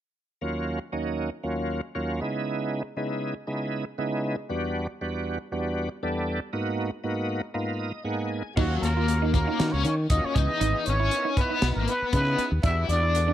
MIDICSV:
0, 0, Header, 1, 8, 480
1, 0, Start_track
1, 0, Tempo, 509338
1, 394, Time_signature, 4, 2, 24, 8
1, 12566, End_track
2, 0, Start_track
2, 0, Title_t, "Muted trumpet"
2, 0, Program_c, 0, 59
2, 8068, Note_on_c, 0, 66, 71
2, 8296, Note_off_c, 0, 66, 0
2, 8300, Note_on_c, 0, 70, 76
2, 8755, Note_off_c, 0, 70, 0
2, 8800, Note_on_c, 0, 70, 61
2, 9162, Note_on_c, 0, 73, 65
2, 9177, Note_off_c, 0, 70, 0
2, 9268, Note_off_c, 0, 73, 0
2, 9273, Note_on_c, 0, 73, 73
2, 9383, Note_off_c, 0, 73, 0
2, 9520, Note_on_c, 0, 75, 88
2, 9658, Note_on_c, 0, 73, 66
2, 9672, Note_off_c, 0, 75, 0
2, 9751, Note_on_c, 0, 75, 89
2, 9765, Note_off_c, 0, 73, 0
2, 10233, Note_on_c, 0, 73, 89
2, 10248, Note_off_c, 0, 75, 0
2, 10715, Note_on_c, 0, 71, 76
2, 10729, Note_off_c, 0, 73, 0
2, 11063, Note_off_c, 0, 71, 0
2, 11069, Note_on_c, 0, 70, 67
2, 11180, Note_off_c, 0, 70, 0
2, 11187, Note_on_c, 0, 71, 90
2, 11415, Note_off_c, 0, 71, 0
2, 11420, Note_on_c, 0, 71, 98
2, 11771, Note_off_c, 0, 71, 0
2, 11898, Note_on_c, 0, 76, 107
2, 12130, Note_off_c, 0, 76, 0
2, 12144, Note_on_c, 0, 74, 98
2, 12566, Note_off_c, 0, 74, 0
2, 12566, End_track
3, 0, Start_track
3, 0, Title_t, "Clean electric guitar"
3, 0, Program_c, 1, 27
3, 8077, Note_on_c, 1, 63, 80
3, 8204, Note_off_c, 1, 63, 0
3, 8451, Note_on_c, 1, 65, 60
3, 8577, Note_off_c, 1, 65, 0
3, 8691, Note_on_c, 1, 63, 68
3, 8817, Note_off_c, 1, 63, 0
3, 8929, Note_on_c, 1, 63, 57
3, 9055, Note_off_c, 1, 63, 0
3, 9753, Note_on_c, 1, 61, 67
3, 9881, Note_off_c, 1, 61, 0
3, 9993, Note_on_c, 1, 63, 78
3, 10121, Note_off_c, 1, 63, 0
3, 10363, Note_on_c, 1, 64, 64
3, 10491, Note_off_c, 1, 64, 0
3, 10600, Note_on_c, 1, 63, 60
3, 10728, Note_off_c, 1, 63, 0
3, 10839, Note_on_c, 1, 63, 55
3, 10967, Note_off_c, 1, 63, 0
3, 11672, Note_on_c, 1, 61, 64
3, 11800, Note_off_c, 1, 61, 0
3, 11905, Note_on_c, 1, 62, 86
3, 12035, Note_off_c, 1, 62, 0
3, 12277, Note_on_c, 1, 64, 60
3, 12406, Note_off_c, 1, 64, 0
3, 12516, Note_on_c, 1, 62, 67
3, 12566, Note_off_c, 1, 62, 0
3, 12566, End_track
4, 0, Start_track
4, 0, Title_t, "Overdriven electric guitar"
4, 0, Program_c, 2, 29
4, 8096, Note_on_c, 2, 54, 50
4, 8311, Note_off_c, 2, 54, 0
4, 8340, Note_on_c, 2, 58, 63
4, 8776, Note_off_c, 2, 58, 0
4, 8806, Note_on_c, 2, 58, 72
4, 9177, Note_off_c, 2, 58, 0
4, 9177, Note_on_c, 2, 61, 73
4, 9283, Note_off_c, 2, 61, 0
4, 9297, Note_on_c, 2, 61, 68
4, 9359, Note_off_c, 2, 61, 0
4, 9532, Note_on_c, 2, 63, 63
4, 9659, Note_off_c, 2, 63, 0
4, 9659, Note_on_c, 2, 61, 54
4, 9778, Note_off_c, 2, 61, 0
4, 9778, Note_on_c, 2, 63, 63
4, 10268, Note_off_c, 2, 63, 0
4, 10268, Note_on_c, 2, 61, 75
4, 10751, Note_off_c, 2, 61, 0
4, 10751, Note_on_c, 2, 59, 78
4, 11103, Note_off_c, 2, 59, 0
4, 11114, Note_on_c, 2, 58, 65
4, 11205, Note_off_c, 2, 58, 0
4, 11220, Note_on_c, 2, 59, 66
4, 11433, Note_off_c, 2, 59, 0
4, 11458, Note_on_c, 2, 59, 67
4, 11792, Note_off_c, 2, 59, 0
4, 11944, Note_on_c, 2, 64, 67
4, 12155, Note_off_c, 2, 64, 0
4, 12176, Note_on_c, 2, 62, 79
4, 12566, Note_off_c, 2, 62, 0
4, 12566, End_track
5, 0, Start_track
5, 0, Title_t, "Tonewheel organ"
5, 0, Program_c, 3, 16
5, 389, Note_on_c, 3, 58, 59
5, 393, Note_on_c, 3, 39, 65
5, 393, Note_on_c, 3, 61, 65
5, 394, Note_on_c, 3, 54, 64
5, 394, Note_on_c, 3, 65, 75
5, 745, Note_off_c, 3, 58, 0
5, 746, Note_off_c, 3, 39, 0
5, 747, Note_off_c, 3, 54, 0
5, 747, Note_off_c, 3, 61, 0
5, 747, Note_off_c, 3, 65, 0
5, 870, Note_on_c, 3, 54, 52
5, 872, Note_on_c, 3, 61, 52
5, 874, Note_on_c, 3, 39, 65
5, 874, Note_on_c, 3, 63, 63
5, 876, Note_on_c, 3, 58, 59
5, 1225, Note_off_c, 3, 54, 0
5, 1227, Note_off_c, 3, 39, 0
5, 1227, Note_off_c, 3, 61, 0
5, 1227, Note_off_c, 3, 63, 0
5, 1229, Note_off_c, 3, 58, 0
5, 1351, Note_on_c, 3, 58, 57
5, 1352, Note_on_c, 3, 39, 67
5, 1352, Note_on_c, 3, 61, 63
5, 1353, Note_on_c, 3, 54, 63
5, 1356, Note_on_c, 3, 65, 72
5, 1706, Note_off_c, 3, 58, 0
5, 1707, Note_off_c, 3, 39, 0
5, 1707, Note_off_c, 3, 54, 0
5, 1707, Note_off_c, 3, 61, 0
5, 1709, Note_off_c, 3, 65, 0
5, 1837, Note_on_c, 3, 61, 70
5, 1839, Note_on_c, 3, 54, 71
5, 1839, Note_on_c, 3, 58, 68
5, 1842, Note_on_c, 3, 65, 82
5, 1843, Note_on_c, 3, 39, 74
5, 2077, Note_off_c, 3, 61, 0
5, 2078, Note_off_c, 3, 54, 0
5, 2078, Note_off_c, 3, 58, 0
5, 2079, Note_off_c, 3, 65, 0
5, 2080, Note_off_c, 3, 39, 0
5, 2083, Note_on_c, 3, 56, 61
5, 2083, Note_on_c, 3, 59, 64
5, 2086, Note_on_c, 3, 49, 68
5, 2086, Note_on_c, 3, 63, 62
5, 2087, Note_on_c, 3, 64, 77
5, 2663, Note_off_c, 3, 56, 0
5, 2664, Note_off_c, 3, 59, 0
5, 2665, Note_off_c, 3, 49, 0
5, 2665, Note_off_c, 3, 63, 0
5, 2666, Note_off_c, 3, 64, 0
5, 2795, Note_on_c, 3, 49, 66
5, 2797, Note_on_c, 3, 63, 60
5, 2799, Note_on_c, 3, 59, 54
5, 2801, Note_on_c, 3, 56, 67
5, 2801, Note_on_c, 3, 64, 69
5, 3149, Note_off_c, 3, 49, 0
5, 3150, Note_off_c, 3, 63, 0
5, 3151, Note_off_c, 3, 59, 0
5, 3152, Note_off_c, 3, 56, 0
5, 3152, Note_off_c, 3, 64, 0
5, 3271, Note_on_c, 3, 63, 62
5, 3273, Note_on_c, 3, 49, 63
5, 3273, Note_on_c, 3, 56, 67
5, 3275, Note_on_c, 3, 59, 63
5, 3278, Note_on_c, 3, 64, 75
5, 3627, Note_off_c, 3, 63, 0
5, 3628, Note_off_c, 3, 49, 0
5, 3628, Note_off_c, 3, 56, 0
5, 3629, Note_off_c, 3, 59, 0
5, 3630, Note_off_c, 3, 64, 0
5, 3752, Note_on_c, 3, 59, 73
5, 3753, Note_on_c, 3, 49, 84
5, 3755, Note_on_c, 3, 63, 79
5, 3756, Note_on_c, 3, 64, 91
5, 3758, Note_on_c, 3, 56, 73
5, 4107, Note_off_c, 3, 59, 0
5, 4108, Note_off_c, 3, 49, 0
5, 4109, Note_off_c, 3, 63, 0
5, 4110, Note_off_c, 3, 56, 0
5, 4110, Note_off_c, 3, 64, 0
5, 4236, Note_on_c, 3, 55, 65
5, 4238, Note_on_c, 3, 59, 67
5, 4240, Note_on_c, 3, 40, 76
5, 4241, Note_on_c, 3, 66, 83
5, 4244, Note_on_c, 3, 62, 72
5, 4590, Note_off_c, 3, 55, 0
5, 4591, Note_off_c, 3, 59, 0
5, 4592, Note_off_c, 3, 40, 0
5, 4592, Note_off_c, 3, 66, 0
5, 4594, Note_off_c, 3, 62, 0
5, 4722, Note_on_c, 3, 40, 61
5, 4724, Note_on_c, 3, 55, 59
5, 4724, Note_on_c, 3, 62, 55
5, 4725, Note_on_c, 3, 66, 69
5, 4727, Note_on_c, 3, 59, 55
5, 5073, Note_off_c, 3, 40, 0
5, 5074, Note_off_c, 3, 55, 0
5, 5074, Note_off_c, 3, 62, 0
5, 5074, Note_off_c, 3, 66, 0
5, 5075, Note_off_c, 3, 59, 0
5, 5199, Note_on_c, 3, 40, 73
5, 5203, Note_on_c, 3, 59, 65
5, 5203, Note_on_c, 3, 66, 77
5, 5205, Note_on_c, 3, 55, 59
5, 5205, Note_on_c, 3, 62, 61
5, 5551, Note_off_c, 3, 40, 0
5, 5554, Note_off_c, 3, 59, 0
5, 5554, Note_off_c, 3, 62, 0
5, 5554, Note_off_c, 3, 66, 0
5, 5555, Note_off_c, 3, 55, 0
5, 5681, Note_on_c, 3, 69, 93
5, 5682, Note_on_c, 3, 40, 77
5, 5682, Note_on_c, 3, 55, 72
5, 5682, Note_on_c, 3, 59, 73
5, 5684, Note_on_c, 3, 62, 72
5, 6033, Note_off_c, 3, 40, 0
5, 6033, Note_off_c, 3, 55, 0
5, 6033, Note_off_c, 3, 59, 0
5, 6033, Note_off_c, 3, 69, 0
5, 6034, Note_off_c, 3, 62, 0
5, 6153, Note_on_c, 3, 44, 77
5, 6153, Note_on_c, 3, 58, 70
5, 6155, Note_on_c, 3, 59, 64
5, 6156, Note_on_c, 3, 63, 71
5, 6158, Note_on_c, 3, 66, 88
5, 6508, Note_off_c, 3, 44, 0
5, 6508, Note_off_c, 3, 58, 0
5, 6510, Note_off_c, 3, 59, 0
5, 6510, Note_off_c, 3, 63, 0
5, 6511, Note_off_c, 3, 66, 0
5, 6630, Note_on_c, 3, 44, 66
5, 6631, Note_on_c, 3, 63, 62
5, 6632, Note_on_c, 3, 59, 61
5, 6633, Note_on_c, 3, 58, 63
5, 6633, Note_on_c, 3, 66, 75
5, 6987, Note_off_c, 3, 44, 0
5, 6988, Note_off_c, 3, 59, 0
5, 6988, Note_off_c, 3, 63, 0
5, 6989, Note_off_c, 3, 58, 0
5, 6989, Note_off_c, 3, 66, 0
5, 7107, Note_on_c, 3, 58, 61
5, 7109, Note_on_c, 3, 44, 59
5, 7109, Note_on_c, 3, 59, 68
5, 7109, Note_on_c, 3, 63, 67
5, 7113, Note_on_c, 3, 65, 78
5, 7344, Note_on_c, 3, 75, 57
5, 7466, Note_off_c, 3, 44, 0
5, 7466, Note_off_c, 3, 58, 0
5, 7467, Note_off_c, 3, 59, 0
5, 7467, Note_off_c, 3, 63, 0
5, 7469, Note_off_c, 3, 65, 0
5, 7574, Note_off_c, 3, 75, 0
5, 7580, Note_on_c, 3, 44, 74
5, 7581, Note_on_c, 3, 58, 75
5, 7581, Note_on_c, 3, 59, 71
5, 7582, Note_on_c, 3, 68, 86
5, 7584, Note_on_c, 3, 63, 74
5, 7586, Note_on_c, 3, 78, 60
5, 7815, Note_off_c, 3, 78, 0
5, 7825, Note_on_c, 3, 80, 59
5, 7942, Note_off_c, 3, 44, 0
5, 7942, Note_off_c, 3, 58, 0
5, 7943, Note_off_c, 3, 59, 0
5, 7943, Note_off_c, 3, 68, 0
5, 7944, Note_off_c, 3, 63, 0
5, 8055, Note_off_c, 3, 80, 0
5, 8067, Note_on_c, 3, 61, 57
5, 8067, Note_on_c, 3, 65, 59
5, 8067, Note_on_c, 3, 66, 76
5, 8068, Note_on_c, 3, 58, 57
5, 8425, Note_off_c, 3, 61, 0
5, 8425, Note_off_c, 3, 65, 0
5, 8425, Note_off_c, 3, 66, 0
5, 8426, Note_off_c, 3, 58, 0
5, 8551, Note_on_c, 3, 61, 51
5, 8552, Note_on_c, 3, 58, 51
5, 8553, Note_on_c, 3, 65, 55
5, 8556, Note_on_c, 3, 66, 60
5, 8732, Note_off_c, 3, 61, 0
5, 8733, Note_off_c, 3, 58, 0
5, 8733, Note_off_c, 3, 65, 0
5, 8735, Note_off_c, 3, 66, 0
5, 8794, Note_on_c, 3, 58, 69
5, 8794, Note_on_c, 3, 61, 65
5, 8794, Note_on_c, 3, 65, 66
5, 8796, Note_on_c, 3, 66, 68
5, 9316, Note_off_c, 3, 58, 0
5, 9316, Note_off_c, 3, 61, 0
5, 9316, Note_off_c, 3, 65, 0
5, 9317, Note_off_c, 3, 66, 0
5, 9523, Note_on_c, 3, 58, 76
5, 9523, Note_on_c, 3, 65, 72
5, 9523, Note_on_c, 3, 66, 86
5, 9526, Note_on_c, 3, 61, 67
5, 9761, Note_off_c, 3, 58, 0
5, 9761, Note_off_c, 3, 65, 0
5, 9761, Note_off_c, 3, 66, 0
5, 9762, Note_off_c, 3, 61, 0
5, 9766, Note_on_c, 3, 59, 69
5, 9766, Note_on_c, 3, 63, 59
5, 9767, Note_on_c, 3, 52, 66
5, 9769, Note_on_c, 3, 68, 72
5, 10345, Note_off_c, 3, 52, 0
5, 10345, Note_off_c, 3, 59, 0
5, 10345, Note_off_c, 3, 63, 0
5, 10346, Note_off_c, 3, 68, 0
5, 10477, Note_on_c, 3, 70, 65
5, 10478, Note_on_c, 3, 59, 51
5, 10480, Note_on_c, 3, 63, 51
5, 10481, Note_on_c, 3, 64, 50
5, 10655, Note_off_c, 3, 59, 0
5, 10655, Note_off_c, 3, 70, 0
5, 10656, Note_off_c, 3, 63, 0
5, 10657, Note_off_c, 3, 64, 0
5, 10723, Note_on_c, 3, 59, 75
5, 10730, Note_on_c, 3, 63, 71
5, 10730, Note_on_c, 3, 64, 60
5, 10730, Note_on_c, 3, 71, 69
5, 11240, Note_off_c, 3, 59, 0
5, 11243, Note_off_c, 3, 63, 0
5, 11243, Note_off_c, 3, 64, 0
5, 11244, Note_off_c, 3, 71, 0
5, 11439, Note_on_c, 3, 59, 77
5, 11441, Note_on_c, 3, 63, 70
5, 11443, Note_on_c, 3, 64, 72
5, 11445, Note_on_c, 3, 68, 84
5, 11791, Note_off_c, 3, 59, 0
5, 11791, Note_off_c, 3, 63, 0
5, 11793, Note_off_c, 3, 64, 0
5, 11793, Note_off_c, 3, 68, 0
5, 11914, Note_on_c, 3, 59, 59
5, 11917, Note_on_c, 3, 66, 62
5, 11920, Note_on_c, 3, 62, 56
5, 11921, Note_on_c, 3, 67, 76
5, 12268, Note_off_c, 3, 59, 0
5, 12269, Note_off_c, 3, 66, 0
5, 12271, Note_off_c, 3, 62, 0
5, 12271, Note_off_c, 3, 67, 0
5, 12395, Note_on_c, 3, 62, 53
5, 12395, Note_on_c, 3, 69, 61
5, 12397, Note_on_c, 3, 59, 59
5, 12399, Note_on_c, 3, 66, 51
5, 12566, Note_off_c, 3, 59, 0
5, 12566, Note_off_c, 3, 62, 0
5, 12566, Note_off_c, 3, 66, 0
5, 12566, Note_off_c, 3, 69, 0
5, 12566, End_track
6, 0, Start_track
6, 0, Title_t, "Fretless electric bass"
6, 0, Program_c, 4, 35
6, 8080, Note_on_c, 4, 39, 81
6, 8281, Note_off_c, 4, 39, 0
6, 8315, Note_on_c, 4, 39, 66
6, 8921, Note_off_c, 4, 39, 0
6, 9047, Note_on_c, 4, 51, 77
6, 9152, Note_off_c, 4, 51, 0
6, 9174, Note_on_c, 4, 37, 75
6, 9264, Note_off_c, 4, 37, 0
6, 9278, Note_on_c, 4, 51, 77
6, 9479, Note_off_c, 4, 51, 0
6, 9518, Note_on_c, 4, 39, 75
6, 9627, Note_off_c, 4, 39, 0
6, 9760, Note_on_c, 4, 37, 66
6, 9868, Note_off_c, 4, 37, 0
6, 10000, Note_on_c, 4, 32, 96
6, 10108, Note_off_c, 4, 32, 0
6, 10248, Note_on_c, 4, 32, 74
6, 10445, Note_off_c, 4, 32, 0
6, 10953, Note_on_c, 4, 35, 75
6, 11063, Note_off_c, 4, 35, 0
6, 11085, Note_on_c, 4, 32, 77
6, 11179, Note_off_c, 4, 32, 0
6, 11434, Note_on_c, 4, 49, 69
6, 11637, Note_off_c, 4, 49, 0
6, 11796, Note_on_c, 4, 39, 77
6, 11894, Note_off_c, 4, 39, 0
6, 11907, Note_on_c, 4, 40, 94
6, 12113, Note_off_c, 4, 40, 0
6, 12144, Note_on_c, 4, 40, 75
6, 12566, Note_off_c, 4, 40, 0
6, 12566, End_track
7, 0, Start_track
7, 0, Title_t, "Muted fretless electric bass strokes"
7, 11330, Note_on_c, 9, 29, 31
7, 11425, Note_off_c, 9, 29, 0
7, 11668, Note_on_c, 9, 29, 33
7, 11762, Note_off_c, 9, 29, 0
7, 12566, End_track
8, 0, Start_track
8, 0, Title_t, "Drums"
8, 8079, Note_on_c, 9, 36, 105
8, 8080, Note_on_c, 9, 49, 96
8, 8173, Note_off_c, 9, 36, 0
8, 8174, Note_off_c, 9, 49, 0
8, 8322, Note_on_c, 9, 42, 54
8, 8416, Note_off_c, 9, 42, 0
8, 8560, Note_on_c, 9, 42, 72
8, 8654, Note_off_c, 9, 42, 0
8, 8801, Note_on_c, 9, 36, 62
8, 8804, Note_on_c, 9, 42, 44
8, 8895, Note_off_c, 9, 36, 0
8, 8898, Note_off_c, 9, 42, 0
8, 9043, Note_on_c, 9, 42, 73
8, 9045, Note_on_c, 9, 38, 95
8, 9137, Note_off_c, 9, 42, 0
8, 9139, Note_off_c, 9, 38, 0
8, 9279, Note_on_c, 9, 42, 52
8, 9373, Note_off_c, 9, 42, 0
8, 9517, Note_on_c, 9, 42, 84
8, 9519, Note_on_c, 9, 36, 78
8, 9611, Note_off_c, 9, 42, 0
8, 9614, Note_off_c, 9, 36, 0
8, 9761, Note_on_c, 9, 36, 81
8, 9762, Note_on_c, 9, 42, 60
8, 9855, Note_off_c, 9, 36, 0
8, 9856, Note_off_c, 9, 42, 0
8, 10000, Note_on_c, 9, 42, 88
8, 10094, Note_off_c, 9, 42, 0
8, 10234, Note_on_c, 9, 42, 57
8, 10328, Note_off_c, 9, 42, 0
8, 10474, Note_on_c, 9, 42, 64
8, 10568, Note_off_c, 9, 42, 0
8, 10714, Note_on_c, 9, 42, 44
8, 10715, Note_on_c, 9, 36, 65
8, 10809, Note_off_c, 9, 36, 0
8, 10809, Note_off_c, 9, 42, 0
8, 10950, Note_on_c, 9, 42, 66
8, 10952, Note_on_c, 9, 38, 97
8, 11044, Note_off_c, 9, 42, 0
8, 11046, Note_off_c, 9, 38, 0
8, 11192, Note_on_c, 9, 42, 52
8, 11287, Note_off_c, 9, 42, 0
8, 11430, Note_on_c, 9, 42, 75
8, 11432, Note_on_c, 9, 36, 75
8, 11524, Note_off_c, 9, 42, 0
8, 11526, Note_off_c, 9, 36, 0
8, 11671, Note_on_c, 9, 42, 49
8, 11766, Note_off_c, 9, 42, 0
8, 11906, Note_on_c, 9, 42, 76
8, 11910, Note_on_c, 9, 36, 102
8, 12001, Note_off_c, 9, 42, 0
8, 12004, Note_off_c, 9, 36, 0
8, 12151, Note_on_c, 9, 42, 55
8, 12245, Note_off_c, 9, 42, 0
8, 12391, Note_on_c, 9, 42, 73
8, 12485, Note_off_c, 9, 42, 0
8, 12566, End_track
0, 0, End_of_file